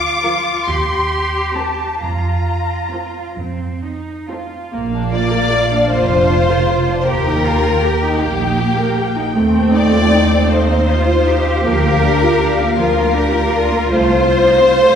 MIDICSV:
0, 0, Header, 1, 6, 480
1, 0, Start_track
1, 0, Key_signature, -2, "major"
1, 0, Tempo, 862069
1, 618, Tempo, 906344
1, 1105, Time_signature, 6, 3, 24, 8
1, 2538, Tempo, 789474
1, 3498, Tempo, 760456
1, 6858, Tempo, 748130
1, 8298, Tempo, 722892
1, 9009, End_track
2, 0, Start_track
2, 0, Title_t, "Violin section"
2, 0, Program_c, 0, 48
2, 0, Note_on_c, 0, 86, 111
2, 357, Note_off_c, 0, 86, 0
2, 367, Note_on_c, 0, 84, 90
2, 855, Note_on_c, 0, 81, 74
2, 856, Note_off_c, 0, 84, 0
2, 1103, Note_off_c, 0, 81, 0
2, 1103, Note_on_c, 0, 82, 65
2, 1824, Note_off_c, 0, 82, 0
2, 2539, Note_on_c, 0, 77, 73
2, 3953, Note_off_c, 0, 77, 0
2, 3977, Note_on_c, 0, 79, 73
2, 6107, Note_off_c, 0, 79, 0
2, 6133, Note_on_c, 0, 77, 76
2, 8288, Note_off_c, 0, 77, 0
2, 8295, Note_on_c, 0, 77, 73
2, 9009, Note_off_c, 0, 77, 0
2, 9009, End_track
3, 0, Start_track
3, 0, Title_t, "Violin section"
3, 0, Program_c, 1, 48
3, 128, Note_on_c, 1, 70, 65
3, 129, Note_off_c, 1, 70, 0
3, 129, Note_on_c, 1, 70, 65
3, 308, Note_off_c, 1, 70, 0
3, 857, Note_on_c, 1, 72, 58
3, 858, Note_on_c, 1, 70, 61
3, 1041, Note_off_c, 1, 70, 0
3, 1041, Note_off_c, 1, 72, 0
3, 1580, Note_on_c, 1, 70, 52
3, 1581, Note_on_c, 1, 72, 53
3, 1760, Note_off_c, 1, 70, 0
3, 1761, Note_off_c, 1, 72, 0
3, 2311, Note_on_c, 1, 69, 51
3, 2311, Note_on_c, 1, 72, 52
3, 2482, Note_off_c, 1, 69, 0
3, 2482, Note_off_c, 1, 72, 0
3, 2780, Note_on_c, 1, 74, 104
3, 3237, Note_off_c, 1, 74, 0
3, 3256, Note_on_c, 1, 72, 105
3, 3918, Note_off_c, 1, 72, 0
3, 3930, Note_on_c, 1, 72, 75
3, 3971, Note_on_c, 1, 70, 109
3, 3976, Note_off_c, 1, 72, 0
3, 4682, Note_on_c, 1, 67, 91
3, 4689, Note_off_c, 1, 70, 0
3, 5405, Note_off_c, 1, 67, 0
3, 5652, Note_on_c, 1, 74, 103
3, 6109, Note_off_c, 1, 74, 0
3, 6130, Note_on_c, 1, 72, 91
3, 6855, Note_off_c, 1, 72, 0
3, 6859, Note_on_c, 1, 70, 108
3, 7571, Note_off_c, 1, 70, 0
3, 7579, Note_on_c, 1, 70, 106
3, 8283, Note_off_c, 1, 70, 0
3, 8297, Note_on_c, 1, 72, 124
3, 9009, Note_off_c, 1, 72, 0
3, 9009, End_track
4, 0, Start_track
4, 0, Title_t, "Cello section"
4, 0, Program_c, 2, 48
4, 0, Note_on_c, 2, 65, 82
4, 358, Note_off_c, 2, 65, 0
4, 372, Note_on_c, 2, 67, 76
4, 1101, Note_on_c, 2, 65, 59
4, 1105, Note_off_c, 2, 67, 0
4, 1762, Note_off_c, 2, 65, 0
4, 1823, Note_on_c, 2, 60, 63
4, 2049, Note_off_c, 2, 60, 0
4, 2064, Note_on_c, 2, 63, 57
4, 2309, Note_on_c, 2, 65, 50
4, 2310, Note_off_c, 2, 63, 0
4, 2536, Note_off_c, 2, 65, 0
4, 3258, Note_on_c, 2, 65, 85
4, 3951, Note_off_c, 2, 65, 0
4, 3974, Note_on_c, 2, 67, 82
4, 4215, Note_off_c, 2, 67, 0
4, 4215, Note_on_c, 2, 65, 75
4, 4453, Note_off_c, 2, 65, 0
4, 4453, Note_on_c, 2, 67, 72
4, 4692, Note_off_c, 2, 67, 0
4, 4692, Note_on_c, 2, 58, 80
4, 5410, Note_off_c, 2, 58, 0
4, 5416, Note_on_c, 2, 60, 85
4, 6136, Note_off_c, 2, 60, 0
4, 6136, Note_on_c, 2, 63, 76
4, 6371, Note_off_c, 2, 63, 0
4, 6379, Note_on_c, 2, 65, 78
4, 6618, Note_off_c, 2, 65, 0
4, 6620, Note_on_c, 2, 67, 93
4, 7579, Note_on_c, 2, 65, 84
4, 7581, Note_off_c, 2, 67, 0
4, 7812, Note_off_c, 2, 65, 0
4, 7817, Note_on_c, 2, 67, 76
4, 8057, Note_off_c, 2, 67, 0
4, 8057, Note_on_c, 2, 65, 90
4, 9009, Note_off_c, 2, 65, 0
4, 9009, End_track
5, 0, Start_track
5, 0, Title_t, "Viola section"
5, 0, Program_c, 3, 48
5, 127, Note_on_c, 3, 53, 64
5, 127, Note_on_c, 3, 65, 57
5, 307, Note_off_c, 3, 53, 0
5, 307, Note_off_c, 3, 65, 0
5, 856, Note_on_c, 3, 60, 56
5, 856, Note_on_c, 3, 67, 57
5, 1040, Note_off_c, 3, 60, 0
5, 1040, Note_off_c, 3, 67, 0
5, 1579, Note_on_c, 3, 65, 47
5, 1580, Note_on_c, 3, 60, 50
5, 1760, Note_off_c, 3, 60, 0
5, 1760, Note_off_c, 3, 65, 0
5, 2310, Note_on_c, 3, 65, 52
5, 2311, Note_on_c, 3, 60, 52
5, 2482, Note_off_c, 3, 60, 0
5, 2482, Note_off_c, 3, 65, 0
5, 2535, Note_on_c, 3, 58, 73
5, 2657, Note_on_c, 3, 62, 61
5, 2776, Note_on_c, 3, 65, 61
5, 2778, Note_off_c, 3, 62, 0
5, 2893, Note_on_c, 3, 70, 63
5, 2898, Note_off_c, 3, 65, 0
5, 3015, Note_on_c, 3, 65, 62
5, 3017, Note_off_c, 3, 70, 0
5, 3134, Note_on_c, 3, 62, 64
5, 3138, Note_off_c, 3, 65, 0
5, 3249, Note_off_c, 3, 58, 0
5, 3257, Note_off_c, 3, 62, 0
5, 3257, Note_on_c, 3, 58, 71
5, 3374, Note_on_c, 3, 62, 62
5, 3378, Note_off_c, 3, 58, 0
5, 3495, Note_off_c, 3, 62, 0
5, 3495, Note_on_c, 3, 65, 61
5, 3617, Note_off_c, 3, 65, 0
5, 3617, Note_on_c, 3, 70, 60
5, 3736, Note_on_c, 3, 65, 63
5, 3738, Note_off_c, 3, 70, 0
5, 3854, Note_on_c, 3, 62, 63
5, 3857, Note_off_c, 3, 65, 0
5, 3976, Note_off_c, 3, 62, 0
5, 3976, Note_on_c, 3, 58, 66
5, 4088, Note_off_c, 3, 58, 0
5, 4095, Note_on_c, 3, 63, 61
5, 4215, Note_on_c, 3, 67, 63
5, 4216, Note_off_c, 3, 63, 0
5, 4335, Note_off_c, 3, 67, 0
5, 4341, Note_on_c, 3, 70, 62
5, 4455, Note_on_c, 3, 67, 59
5, 4457, Note_off_c, 3, 70, 0
5, 4573, Note_off_c, 3, 67, 0
5, 4578, Note_on_c, 3, 63, 68
5, 4695, Note_off_c, 3, 63, 0
5, 4696, Note_on_c, 3, 58, 65
5, 4814, Note_off_c, 3, 58, 0
5, 4821, Note_on_c, 3, 63, 63
5, 4937, Note_off_c, 3, 63, 0
5, 4941, Note_on_c, 3, 67, 62
5, 5057, Note_off_c, 3, 67, 0
5, 5058, Note_on_c, 3, 70, 64
5, 5175, Note_off_c, 3, 70, 0
5, 5179, Note_on_c, 3, 67, 65
5, 5295, Note_off_c, 3, 67, 0
5, 5299, Note_on_c, 3, 63, 62
5, 5412, Note_on_c, 3, 57, 67
5, 5414, Note_off_c, 3, 57, 0
5, 5414, Note_on_c, 3, 57, 76
5, 5415, Note_off_c, 3, 63, 0
5, 5535, Note_on_c, 3, 60, 64
5, 5652, Note_on_c, 3, 63, 66
5, 5653, Note_off_c, 3, 60, 0
5, 5771, Note_off_c, 3, 63, 0
5, 5776, Note_on_c, 3, 65, 64
5, 5894, Note_off_c, 3, 65, 0
5, 5896, Note_on_c, 3, 63, 64
5, 6015, Note_off_c, 3, 63, 0
5, 6015, Note_on_c, 3, 60, 67
5, 6124, Note_off_c, 3, 57, 0
5, 6132, Note_on_c, 3, 57, 71
5, 6134, Note_off_c, 3, 60, 0
5, 6253, Note_off_c, 3, 57, 0
5, 6257, Note_on_c, 3, 60, 66
5, 6374, Note_on_c, 3, 63, 69
5, 6376, Note_off_c, 3, 60, 0
5, 6495, Note_off_c, 3, 63, 0
5, 6496, Note_on_c, 3, 65, 67
5, 6614, Note_on_c, 3, 63, 67
5, 6616, Note_off_c, 3, 65, 0
5, 6735, Note_off_c, 3, 63, 0
5, 6738, Note_on_c, 3, 60, 67
5, 6858, Note_off_c, 3, 60, 0
5, 6864, Note_on_c, 3, 53, 77
5, 6864, Note_on_c, 3, 58, 71
5, 6974, Note_off_c, 3, 53, 0
5, 6980, Note_off_c, 3, 58, 0
5, 6988, Note_on_c, 3, 58, 63
5, 7105, Note_off_c, 3, 58, 0
5, 7107, Note_on_c, 3, 62, 66
5, 7225, Note_off_c, 3, 62, 0
5, 7230, Note_on_c, 3, 65, 66
5, 7346, Note_off_c, 3, 65, 0
5, 7351, Note_on_c, 3, 62, 63
5, 7466, Note_off_c, 3, 62, 0
5, 7476, Note_on_c, 3, 58, 72
5, 7587, Note_off_c, 3, 58, 0
5, 7590, Note_on_c, 3, 53, 76
5, 7702, Note_on_c, 3, 58, 67
5, 7703, Note_off_c, 3, 53, 0
5, 7819, Note_off_c, 3, 58, 0
5, 7822, Note_on_c, 3, 62, 68
5, 7939, Note_off_c, 3, 62, 0
5, 7948, Note_on_c, 3, 65, 65
5, 8063, Note_off_c, 3, 65, 0
5, 8068, Note_on_c, 3, 62, 61
5, 8183, Note_off_c, 3, 62, 0
5, 8185, Note_on_c, 3, 58, 63
5, 8301, Note_off_c, 3, 58, 0
5, 8306, Note_on_c, 3, 57, 69
5, 8308, Note_on_c, 3, 53, 70
5, 8417, Note_off_c, 3, 53, 0
5, 8422, Note_off_c, 3, 57, 0
5, 8430, Note_on_c, 3, 57, 66
5, 8546, Note_off_c, 3, 57, 0
5, 8547, Note_on_c, 3, 60, 63
5, 8664, Note_off_c, 3, 60, 0
5, 8671, Note_on_c, 3, 63, 60
5, 8785, Note_off_c, 3, 63, 0
5, 8785, Note_on_c, 3, 60, 61
5, 8901, Note_off_c, 3, 60, 0
5, 8903, Note_on_c, 3, 57, 61
5, 9009, Note_off_c, 3, 57, 0
5, 9009, End_track
6, 0, Start_track
6, 0, Title_t, "Double bass section"
6, 0, Program_c, 4, 48
6, 0, Note_on_c, 4, 38, 81
6, 242, Note_off_c, 4, 38, 0
6, 372, Note_on_c, 4, 39, 73
6, 972, Note_off_c, 4, 39, 0
6, 1101, Note_on_c, 4, 41, 69
6, 1695, Note_off_c, 4, 41, 0
6, 1822, Note_on_c, 4, 41, 63
6, 2417, Note_off_c, 4, 41, 0
6, 2539, Note_on_c, 4, 34, 82
6, 3141, Note_off_c, 4, 34, 0
6, 3257, Note_on_c, 4, 29, 78
6, 3856, Note_off_c, 4, 29, 0
6, 3978, Note_on_c, 4, 39, 86
6, 4572, Note_off_c, 4, 39, 0
6, 4691, Note_on_c, 4, 34, 76
6, 5291, Note_off_c, 4, 34, 0
6, 5415, Note_on_c, 4, 39, 81
6, 6015, Note_off_c, 4, 39, 0
6, 6134, Note_on_c, 4, 39, 82
6, 6737, Note_off_c, 4, 39, 0
6, 6861, Note_on_c, 4, 38, 87
6, 7462, Note_off_c, 4, 38, 0
6, 7577, Note_on_c, 4, 38, 88
6, 8176, Note_off_c, 4, 38, 0
6, 8295, Note_on_c, 4, 36, 84
6, 8897, Note_off_c, 4, 36, 0
6, 9009, End_track
0, 0, End_of_file